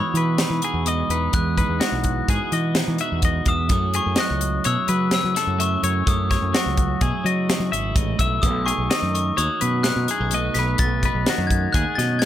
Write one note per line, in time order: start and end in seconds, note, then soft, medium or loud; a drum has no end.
0.00 0.85 E2 medium
0.00 1.61 E3 medium
0.00 0.87 G#3 medium
0.00 0.38 D#4 medium
0.00 0.62 F#4 medium
0.00 0.16 C#5 medium
0.00 0.40 B5 medium
0.14 1.31 B2 medium
0.14 0.42 E3 medium
0.14 0.64 B4 medium
0.14 closed hi-hat medium
0.38 1.10 D#4 soft
0.38 0.84 B5 medium
0.38 snare loud
0.38 closed hi-hat medium
0.50 0.60 E3 medium
0.62 1.37 F#4 medium
0.62 0.87 G#4 medium
0.62 closed hi-hat medium
0.74 1.02 E2 medium
0.86 1.33 E2 medium
0.86 1.34 G#3 medium
0.86 1.11 D#5 medium
0.86 1.35 D#6 medium
0.86 closed hi-hat medium
1.09 1.28 E2 medium
1.09 1.31 D#4 medium
1.09 1.57 B4 medium
1.09 closed hi-hat medium
1.33 1.61 E2 medium
1.33 3.44 E2 medium
1.33 3.71 G#3 medium
1.33 2.01 F#6 medium
1.33 kick loud
1.33 closed hi-hat medium
1.58 2.76 D#4 medium
1.58 1.81 B4 medium
1.58 kick medium
1.58 closed hi-hat medium
1.69 1.78 E2 medium
1.80 3.70 E3 medium
1.80 2.28 F#4 medium
1.80 snare loud
1.80 closed hi-hat medium
1.92 2.20 B1 medium
2.04 kick medium
2.04 closed hi-hat medium
2.28 2.38 G#2 medium
2.28 3.01 F#4 medium
2.28 2.53 G#4 medium
2.28 kick loud
2.28 closed hi-hat medium
2.52 3.69 B2 medium
2.52 2.80 E3 medium
2.52 3.00 D#5 medium
2.52 closed hi-hat medium
2.75 3.68 D#4 medium
2.75 snare loud
2.75 closed hi-hat medium
2.88 2.97 E3 medium
2.98 3.72 F#4 medium
2.98 3.24 E5 medium
2.98 closed hi-hat medium
3.12 3.40 E2 medium
3.22 3.48 D#5 medium
3.22 kick medium
3.22 closed hi-hat medium
3.45 3.69 E2 medium
3.45 3.70 E2 medium
3.45 3.71 E5 medium
3.45 3.70 D#6 medium
3.45 kick medium
3.45 closed hi-hat medium
3.69 5.57 F#2 medium
3.69 3.98 F#2 medium
3.69 4.16 F#3 medium
3.69 5.58 A3 medium
3.69 3.95 C#4 medium
3.69 4.65 E4 medium
3.69 3.95 D#6 medium
3.69 kick loud
3.69 closed hi-hat medium
3.94 5.11 C#4 soft
3.94 4.18 G#4 medium
3.94 4.17 C#6 medium
3.94 closed hi-hat medium
4.06 4.15 F#2 medium
4.16 6.52 F#3 medium
4.16 4.65 D#5 medium
4.16 snare loud
4.16 closed hi-hat medium
4.20 4.68 F#6 medium
4.31 4.58 C#2 medium
4.41 closed hi-hat medium
4.64 4.75 B2 medium
4.64 5.33 E4 medium
4.64 4.89 C#5 medium
4.64 5.13 E6 loud
4.64 closed hi-hat medium
4.87 6.04 C#3 medium
4.87 5.17 F#3 medium
4.87 5.36 B4 medium
4.87 closed hi-hat medium
5.11 5.82 C#4 medium
5.11 5.62 E6 loud
5.11 snare loud
5.11 closed hi-hat medium
5.24 5.34 F#3 medium
5.35 7.00 E4 medium
5.35 5.60 A4 medium
5.35 snare soft
5.35 closed hi-hat medium
5.47 5.75 F#2 medium
5.58 6.03 F#2 medium
5.58 6.06 A3 medium
5.58 5.83 E5 medium
5.58 6.05 C#6 medium
5.58 closed hi-hat medium
5.83 6.02 F#2 medium
5.83 6.04 C#4 medium
5.83 6.30 C#5 medium
5.83 closed hi-hat medium
6.06 7.95 F#2 medium
6.06 6.35 F#2 medium
6.06 8.43 A3 medium
6.06 6.56 D#6 medium
6.06 kick loud
6.06 closed hi-hat medium
6.29 7.48 C#4 medium
6.29 6.55 C#5 medium
6.29 kick medium
6.29 snare soft
6.29 closed hi-hat medium
6.42 6.51 F#2 medium
6.53 8.91 F#3 medium
6.53 7.02 F#4 medium
6.53 7.94 C#6 medium
6.53 snare loud
6.53 closed hi-hat medium
6.66 6.94 C#2 medium
6.77 kick medium
6.77 closed hi-hat medium
7.01 7.11 B2 medium
7.01 7.72 E4 medium
7.01 7.26 G#4 medium
7.01 kick medium
7.01 closed hi-hat medium
7.23 8.18 C#3 medium
7.23 7.53 F#3 medium
7.23 7.72 D#5 medium
7.23 closed hi-hat medium
7.49 8.41 C#4 medium
7.49 snare loud
7.49 closed hi-hat medium
7.60 7.70 F#3 medium
7.72 7.94 G#1 medium
7.72 8.44 E4 medium
7.72 7.97 E5 medium
7.72 closed hi-hat medium
7.95 8.17 A1 medium
7.95 8.19 G#2 medium
7.95 8.20 D#5 medium
7.95 kick loud
7.95 closed hi-hat medium
8.19 8.43 B1 medium
8.19 8.42 A2 medium
8.19 8.44 E5 medium
8.19 8.41 E6 medium
8.19 kick medium
8.19 closed hi-hat medium
8.42 8.71 B1 medium
8.42 8.91 B2 medium
8.42 10.34 A3 medium
8.42 8.67 D#6 medium
8.42 kick loud
8.42 closed hi-hat medium
8.66 9.85 D#4 medium
8.66 8.91 G#4 medium
8.66 8.91 C#6 medium
8.66 closed hi-hat medium
8.78 8.88 B1 medium
8.90 10.77 D#3 medium
8.90 9.37 D#5 medium
8.90 9.15 D#6 medium
8.90 snare loud
8.90 closed hi-hat medium
9.02 9.30 F#2 medium
9.15 9.39 C#6 medium
9.15 closed hi-hat medium
9.37 9.47 D#2 medium
9.37 10.08 F#4 medium
9.37 9.61 C#5 medium
9.37 9.87 D#6 medium
9.37 closed hi-hat medium
9.60 10.32 F#2 medium
9.60 9.90 B2 medium
9.60 10.09 B4 medium
9.60 closed hi-hat medium
9.83 10.56 D#4 medium
9.83 10.58 F#6 loud
9.83 snare loud
9.83 closed hi-hat medium
9.96 10.06 B2 medium
10.08 10.21 E4 medium
10.08 10.34 G#4 medium
10.08 closed hi-hat medium
10.20 10.48 B1 medium
10.20 10.80 F#4 medium
10.31 10.77 B2 medium
10.31 10.80 A3 medium
10.31 10.57 D#5 medium
10.31 closed hi-hat medium
10.54 10.74 B1 medium
10.54 10.78 D#4 medium
10.54 10.80 B6 medium
10.54 snare soft
10.54 closed hi-hat medium
10.59 11.04 B4 medium
10.78 11.07 B1 medium
10.78 11.27 B2 medium
10.78 12.25 A3 medium
10.78 11.53 A6 loud
10.78 kick loud
10.78 closed hi-hat medium
11.03 12.23 D#4 soft
11.03 11.28 B4 medium
11.03 kick medium
11.03 closed hi-hat medium
11.15 11.24 B1 medium
11.26 12.25 D#3 medium
11.26 11.76 F#4 medium
11.26 snare loud
11.26 closed hi-hat medium
11.38 11.66 F#2 medium
11.47 11.73 G#6 medium
11.47 kick medium
11.47 closed hi-hat medium
11.73 11.84 D#2 medium
11.73 12.25 F#4 medium
11.73 11.99 G#4 medium
11.73 11.98 F#6 medium
11.73 kick loud
11.73 closed hi-hat medium
11.95 12.25 F#2 medium
11.95 12.25 B2 medium
11.95 12.25 D#5 medium
11.95 12.21 A6 loud
11.95 snare soft
11.95 closed hi-hat medium
12.19 12.25 G#6 loud
12.19 snare loud
12.19 closed hi-hat medium